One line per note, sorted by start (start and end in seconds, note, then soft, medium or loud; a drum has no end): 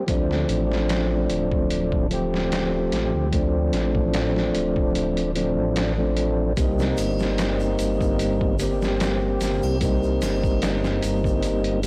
0.07 0.44 D2 medium
0.07 2.06 F3 medium
0.07 2.06 A3 medium
0.07 2.07 C4 medium
0.07 kick loud
0.07 closed hi-hat medium
0.11 2.08 D4 medium
0.31 snare soft
0.49 1.26 A1 medium
0.49 closed hi-hat medium
0.72 snare soft
0.89 snare loud
0.89 closed hi-hat medium
1.30 2.89 D1 loud
1.30 closed hi-hat medium
1.52 kick medium
1.70 closed hi-hat medium
1.92 kick medium
2.09 3.27 F3 medium
2.09 3.28 A3 medium
2.09 3.29 C4 medium
2.09 3.29 G4 medium
2.09 closed hi-hat medium
2.34 snare soft
2.52 snare loud
2.52 closed hi-hat medium
2.92 3.11 A1 medium
2.92 snare soft
2.92 closed hi-hat medium
3.14 3.70 D2 medium
3.31 5.30 F3 medium
3.31 5.31 A3 medium
3.31 5.31 C4 medium
3.31 kick loud
3.31 closed hi-hat medium
3.35 5.32 D4 medium
3.73 4.51 A1 medium
3.73 snare soft
3.73 closed hi-hat medium
3.95 kick medium
4.14 snare loud
4.14 closed hi-hat medium
4.36 snare soft
4.55 5.57 D1 loud
4.55 closed hi-hat medium
4.76 kick medium
4.95 closed hi-hat medium
5.17 closed hi-hat soft
5.35 5.92 F3 medium
5.35 5.92 A3 medium
5.35 5.93 C4 medium
5.35 5.93 D4 loud
5.35 closed hi-hat medium
5.58 6.54 A1 medium
5.76 snare loud
5.76 closed hi-hat medium
5.97 6.52 F3 medium
5.97 6.53 A3 medium
5.97 6.53 C4 medium
5.97 6.53 D4 medium
6.17 closed hi-hat medium
6.56 6.93 C2 medium
6.56 8.55 G3 medium
6.56 8.55 A#3 medium
6.56 8.56 C4 medium
6.56 kick loud
6.56 closed hi-hat medium
6.56 shaker soft
6.60 8.57 D#4 medium
6.79 snare soft
6.79 shaker soft
6.98 7.75 G1 medium
6.98 closed hi-hat medium
6.98 triangle medium
6.98 shaker medium
7.19 snare soft
7.19 shaker soft
7.38 snare loud
7.38 closed hi-hat medium
7.38 shaker medium
7.60 shaker soft
7.79 9.38 G1 loud
7.79 closed hi-hat medium
7.79 shaker medium
8.01 kick medium
8.01 shaker soft
8.19 closed hi-hat medium
8.19 shaker soft
8.41 kick medium
8.59 9.76 G3 medium
8.59 9.77 A#3 medium
8.59 9.78 C4 medium
8.59 9.78 G4 medium
8.59 closed hi-hat medium
8.59 shaker medium
8.82 snare soft
8.82 shaker soft
9.00 snare loud
9.00 closed hi-hat medium
9.00 shaker soft
9.41 9.60 G1 medium
9.41 snare soft
9.41 closed hi-hat medium
9.41 shaker medium
9.62 10.19 C2 medium
9.62 triangle medium
9.62 shaker soft
9.80 11.79 G3 medium
9.80 11.80 A#3 medium
9.80 11.80 C4 medium
9.80 11.81 D#4 medium
9.80 kick loud
9.80 closed hi-hat medium
9.80 shaker soft
10.03 shaker soft
10.22 11.00 G1 medium
10.22 snare soft
10.22 closed hi-hat medium
10.22 triangle medium
10.22 shaker medium
10.44 kick medium
10.44 shaker soft
10.62 snare loud
10.62 closed hi-hat medium
10.62 shaker soft
10.84 snare soft
10.84 shaker soft
11.03 11.87 G1 loud
11.03 closed hi-hat medium
11.03 shaker medium
11.24 kick medium
11.24 shaker soft
11.43 closed hi-hat medium
11.43 shaker soft
11.64 closed hi-hat soft
11.83 11.87 G3 medium
11.83 closed hi-hat medium
11.83 shaker medium